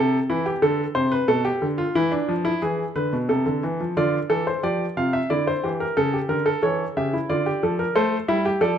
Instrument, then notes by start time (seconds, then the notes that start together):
grand piano
Already playing: C3 A4
0.30 E3 E4
0.46 G4
0.62 D3 A4
0.95 C3 C5
1.12 B4
1.28 B2 A4
1.45 G4
1.62 D3
1.78 F4
1.95 E3 E4
2.12 D4
2.29 F3
2.45 E4
2.62 E3 G#4
2.96 D3 B4
3.13 B2
3.29 C3 A4
3.46 D3
3.63 E3
3.81 F3
3.97 D3 F4 D5
4.30 E3 A4
4.47 C5
4.63 F3 G4 D5
4.97 C3 F4 F5
5.13 E5
5.30 D3 E4 D5
5.47 C5
5.63 E3 G4
5.80 A#4
5.97 C#3 A4
6.13 G4
6.29 D3 A#4
6.46 A4
6.63 E3 A4 C#5
6.97 C#3 G4 E5
7.13 E4
7.29 D3 F4 D5
7.46 G4
7.63 F3 A4
7.79 A#4
7.95 A3 A4 C5
8.28 G3 E4 E5
8.45 G4
8.61 F3 A4 D5